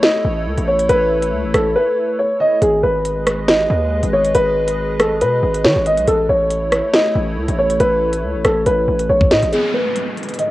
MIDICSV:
0, 0, Header, 1, 6, 480
1, 0, Start_track
1, 0, Tempo, 431655
1, 994, Time_signature, 4, 2, 24, 8
1, 11685, End_track
2, 0, Start_track
2, 0, Title_t, "Grand piano"
2, 0, Program_c, 0, 0
2, 34, Note_on_c, 0, 75, 88
2, 711, Note_off_c, 0, 75, 0
2, 752, Note_on_c, 0, 73, 83
2, 946, Note_off_c, 0, 73, 0
2, 992, Note_on_c, 0, 71, 103
2, 1670, Note_off_c, 0, 71, 0
2, 1713, Note_on_c, 0, 69, 79
2, 1907, Note_off_c, 0, 69, 0
2, 1954, Note_on_c, 0, 71, 88
2, 2405, Note_off_c, 0, 71, 0
2, 2433, Note_on_c, 0, 73, 79
2, 2627, Note_off_c, 0, 73, 0
2, 2672, Note_on_c, 0, 75, 88
2, 2866, Note_off_c, 0, 75, 0
2, 2912, Note_on_c, 0, 68, 88
2, 3106, Note_off_c, 0, 68, 0
2, 3152, Note_on_c, 0, 71, 76
2, 3830, Note_off_c, 0, 71, 0
2, 3874, Note_on_c, 0, 75, 89
2, 4551, Note_off_c, 0, 75, 0
2, 4594, Note_on_c, 0, 73, 85
2, 4787, Note_off_c, 0, 73, 0
2, 4833, Note_on_c, 0, 71, 101
2, 5510, Note_off_c, 0, 71, 0
2, 5554, Note_on_c, 0, 69, 79
2, 5747, Note_off_c, 0, 69, 0
2, 5794, Note_on_c, 0, 71, 86
2, 6245, Note_off_c, 0, 71, 0
2, 6274, Note_on_c, 0, 73, 87
2, 6467, Note_off_c, 0, 73, 0
2, 6513, Note_on_c, 0, 75, 90
2, 6707, Note_off_c, 0, 75, 0
2, 6752, Note_on_c, 0, 69, 91
2, 6946, Note_off_c, 0, 69, 0
2, 6993, Note_on_c, 0, 73, 82
2, 7670, Note_off_c, 0, 73, 0
2, 7713, Note_on_c, 0, 75, 88
2, 8390, Note_off_c, 0, 75, 0
2, 8434, Note_on_c, 0, 73, 80
2, 8627, Note_off_c, 0, 73, 0
2, 8674, Note_on_c, 0, 71, 98
2, 9351, Note_off_c, 0, 71, 0
2, 9394, Note_on_c, 0, 69, 83
2, 9587, Note_off_c, 0, 69, 0
2, 9634, Note_on_c, 0, 71, 87
2, 10085, Note_off_c, 0, 71, 0
2, 10113, Note_on_c, 0, 73, 81
2, 10307, Note_off_c, 0, 73, 0
2, 10354, Note_on_c, 0, 75, 88
2, 10547, Note_off_c, 0, 75, 0
2, 10592, Note_on_c, 0, 68, 82
2, 10786, Note_off_c, 0, 68, 0
2, 10832, Note_on_c, 0, 71, 70
2, 11510, Note_off_c, 0, 71, 0
2, 11552, Note_on_c, 0, 75, 89
2, 11685, Note_off_c, 0, 75, 0
2, 11685, End_track
3, 0, Start_track
3, 0, Title_t, "Analog synth pad"
3, 0, Program_c, 1, 89
3, 0, Note_on_c, 1, 57, 83
3, 0, Note_on_c, 1, 64, 91
3, 0, Note_on_c, 1, 69, 77
3, 0, Note_on_c, 1, 73, 75
3, 2875, Note_off_c, 1, 57, 0
3, 2875, Note_off_c, 1, 64, 0
3, 2875, Note_off_c, 1, 69, 0
3, 2875, Note_off_c, 1, 73, 0
3, 2913, Note_on_c, 1, 68, 74
3, 2913, Note_on_c, 1, 71, 77
3, 2913, Note_on_c, 1, 75, 90
3, 2914, Note_on_c, 1, 56, 85
3, 6715, Note_off_c, 1, 56, 0
3, 6715, Note_off_c, 1, 68, 0
3, 6715, Note_off_c, 1, 71, 0
3, 6715, Note_off_c, 1, 75, 0
3, 6753, Note_on_c, 1, 57, 82
3, 6753, Note_on_c, 1, 64, 90
3, 6753, Note_on_c, 1, 69, 76
3, 6753, Note_on_c, 1, 73, 76
3, 10555, Note_off_c, 1, 57, 0
3, 10555, Note_off_c, 1, 64, 0
3, 10555, Note_off_c, 1, 69, 0
3, 10555, Note_off_c, 1, 73, 0
3, 10594, Note_on_c, 1, 44, 79
3, 10594, Note_on_c, 1, 56, 71
3, 10594, Note_on_c, 1, 71, 73
3, 10594, Note_on_c, 1, 75, 87
3, 11685, Note_off_c, 1, 44, 0
3, 11685, Note_off_c, 1, 56, 0
3, 11685, Note_off_c, 1, 71, 0
3, 11685, Note_off_c, 1, 75, 0
3, 11685, End_track
4, 0, Start_track
4, 0, Title_t, "808-style bass"
4, 0, Program_c, 2, 38
4, 274, Note_on_c, 2, 33, 105
4, 514, Note_on_c, 2, 37, 106
4, 531, Note_off_c, 2, 33, 0
4, 635, Note_off_c, 2, 37, 0
4, 641, Note_on_c, 2, 33, 106
4, 980, Note_off_c, 2, 33, 0
4, 995, Note_on_c, 2, 33, 115
4, 1474, Note_on_c, 2, 37, 97
4, 1491, Note_off_c, 2, 33, 0
4, 1601, Note_on_c, 2, 33, 101
4, 1618, Note_off_c, 2, 37, 0
4, 1708, Note_off_c, 2, 33, 0
4, 1714, Note_on_c, 2, 33, 109
4, 1944, Note_off_c, 2, 33, 0
4, 2914, Note_on_c, 2, 32, 122
4, 3144, Note_off_c, 2, 32, 0
4, 3154, Note_on_c, 2, 32, 100
4, 4075, Note_off_c, 2, 32, 0
4, 4114, Note_on_c, 2, 39, 108
4, 4466, Note_off_c, 2, 39, 0
4, 4481, Note_on_c, 2, 32, 106
4, 4820, Note_off_c, 2, 32, 0
4, 4834, Note_on_c, 2, 32, 112
4, 5794, Note_on_c, 2, 47, 102
4, 5810, Note_off_c, 2, 32, 0
4, 6022, Note_off_c, 2, 47, 0
4, 6034, Note_on_c, 2, 32, 102
4, 6274, Note_on_c, 2, 51, 105
4, 6290, Note_off_c, 2, 32, 0
4, 6395, Note_off_c, 2, 51, 0
4, 6401, Note_on_c, 2, 32, 110
4, 6641, Note_on_c, 2, 35, 101
4, 6657, Note_off_c, 2, 32, 0
4, 6748, Note_off_c, 2, 35, 0
4, 6753, Note_on_c, 2, 33, 115
4, 6984, Note_off_c, 2, 33, 0
4, 6994, Note_on_c, 2, 33, 101
4, 7577, Note_off_c, 2, 33, 0
4, 7954, Note_on_c, 2, 33, 109
4, 8194, Note_on_c, 2, 37, 99
4, 8211, Note_off_c, 2, 33, 0
4, 8315, Note_off_c, 2, 37, 0
4, 8321, Note_on_c, 2, 33, 108
4, 8660, Note_off_c, 2, 33, 0
4, 8674, Note_on_c, 2, 33, 112
4, 9154, Note_on_c, 2, 37, 100
4, 9171, Note_off_c, 2, 33, 0
4, 9282, Note_on_c, 2, 33, 99
4, 9298, Note_off_c, 2, 37, 0
4, 9388, Note_off_c, 2, 33, 0
4, 9394, Note_on_c, 2, 33, 103
4, 9624, Note_off_c, 2, 33, 0
4, 9635, Note_on_c, 2, 33, 114
4, 9865, Note_off_c, 2, 33, 0
4, 9875, Note_on_c, 2, 33, 108
4, 10105, Note_off_c, 2, 33, 0
4, 10114, Note_on_c, 2, 33, 109
4, 10354, Note_on_c, 2, 45, 101
4, 10371, Note_off_c, 2, 33, 0
4, 10475, Note_off_c, 2, 45, 0
4, 10482, Note_on_c, 2, 33, 104
4, 10590, Note_off_c, 2, 33, 0
4, 11685, End_track
5, 0, Start_track
5, 0, Title_t, "Downlifter"
5, 0, Program_c, 3, 103
5, 10594, Note_on_c, 3, 60, 79
5, 11685, Note_off_c, 3, 60, 0
5, 11685, End_track
6, 0, Start_track
6, 0, Title_t, "Drums"
6, 33, Note_on_c, 9, 38, 122
6, 34, Note_on_c, 9, 42, 92
6, 144, Note_off_c, 9, 38, 0
6, 145, Note_off_c, 9, 42, 0
6, 641, Note_on_c, 9, 42, 77
6, 752, Note_off_c, 9, 42, 0
6, 881, Note_on_c, 9, 42, 75
6, 992, Note_off_c, 9, 42, 0
6, 993, Note_on_c, 9, 42, 82
6, 1105, Note_off_c, 9, 42, 0
6, 1361, Note_on_c, 9, 42, 89
6, 1472, Note_off_c, 9, 42, 0
6, 1714, Note_on_c, 9, 37, 97
6, 1714, Note_on_c, 9, 42, 83
6, 1825, Note_off_c, 9, 42, 0
6, 1826, Note_off_c, 9, 37, 0
6, 2914, Note_on_c, 9, 42, 83
6, 3025, Note_off_c, 9, 42, 0
6, 3394, Note_on_c, 9, 42, 90
6, 3505, Note_off_c, 9, 42, 0
6, 3634, Note_on_c, 9, 42, 80
6, 3635, Note_on_c, 9, 37, 102
6, 3745, Note_off_c, 9, 42, 0
6, 3746, Note_off_c, 9, 37, 0
6, 3873, Note_on_c, 9, 38, 121
6, 3874, Note_on_c, 9, 42, 94
6, 3984, Note_off_c, 9, 38, 0
6, 3985, Note_off_c, 9, 42, 0
6, 4481, Note_on_c, 9, 42, 73
6, 4592, Note_off_c, 9, 42, 0
6, 4721, Note_on_c, 9, 42, 74
6, 4832, Note_off_c, 9, 42, 0
6, 4833, Note_on_c, 9, 42, 80
6, 4944, Note_off_c, 9, 42, 0
6, 5201, Note_on_c, 9, 42, 90
6, 5312, Note_off_c, 9, 42, 0
6, 5554, Note_on_c, 9, 37, 100
6, 5554, Note_on_c, 9, 42, 84
6, 5665, Note_off_c, 9, 37, 0
6, 5665, Note_off_c, 9, 42, 0
6, 5793, Note_on_c, 9, 42, 93
6, 5904, Note_off_c, 9, 42, 0
6, 6160, Note_on_c, 9, 42, 79
6, 6272, Note_off_c, 9, 42, 0
6, 6273, Note_on_c, 9, 38, 103
6, 6385, Note_off_c, 9, 38, 0
6, 6513, Note_on_c, 9, 42, 90
6, 6624, Note_off_c, 9, 42, 0
6, 6640, Note_on_c, 9, 42, 69
6, 6752, Note_off_c, 9, 42, 0
6, 6753, Note_on_c, 9, 42, 81
6, 6864, Note_off_c, 9, 42, 0
6, 7233, Note_on_c, 9, 42, 91
6, 7344, Note_off_c, 9, 42, 0
6, 7473, Note_on_c, 9, 42, 79
6, 7474, Note_on_c, 9, 37, 100
6, 7584, Note_off_c, 9, 42, 0
6, 7585, Note_off_c, 9, 37, 0
6, 7712, Note_on_c, 9, 38, 123
6, 7713, Note_on_c, 9, 42, 96
6, 7823, Note_off_c, 9, 38, 0
6, 7824, Note_off_c, 9, 42, 0
6, 8321, Note_on_c, 9, 42, 75
6, 8432, Note_off_c, 9, 42, 0
6, 8561, Note_on_c, 9, 42, 77
6, 8672, Note_off_c, 9, 42, 0
6, 8674, Note_on_c, 9, 42, 81
6, 8785, Note_off_c, 9, 42, 0
6, 9040, Note_on_c, 9, 42, 90
6, 9152, Note_off_c, 9, 42, 0
6, 9394, Note_on_c, 9, 42, 85
6, 9395, Note_on_c, 9, 37, 98
6, 9505, Note_off_c, 9, 42, 0
6, 9506, Note_off_c, 9, 37, 0
6, 9634, Note_on_c, 9, 42, 98
6, 9745, Note_off_c, 9, 42, 0
6, 10001, Note_on_c, 9, 42, 80
6, 10113, Note_off_c, 9, 42, 0
6, 10241, Note_on_c, 9, 36, 85
6, 10352, Note_off_c, 9, 36, 0
6, 10354, Note_on_c, 9, 38, 114
6, 10354, Note_on_c, 9, 42, 90
6, 10465, Note_off_c, 9, 38, 0
6, 10465, Note_off_c, 9, 42, 0
6, 10481, Note_on_c, 9, 42, 72
6, 10592, Note_off_c, 9, 42, 0
6, 10594, Note_on_c, 9, 42, 76
6, 10705, Note_off_c, 9, 42, 0
6, 11074, Note_on_c, 9, 42, 85
6, 11185, Note_off_c, 9, 42, 0
6, 11314, Note_on_c, 9, 42, 45
6, 11378, Note_off_c, 9, 42, 0
6, 11378, Note_on_c, 9, 42, 54
6, 11441, Note_off_c, 9, 42, 0
6, 11441, Note_on_c, 9, 42, 66
6, 11498, Note_off_c, 9, 42, 0
6, 11498, Note_on_c, 9, 42, 74
6, 11555, Note_off_c, 9, 42, 0
6, 11555, Note_on_c, 9, 42, 89
6, 11666, Note_off_c, 9, 42, 0
6, 11685, End_track
0, 0, End_of_file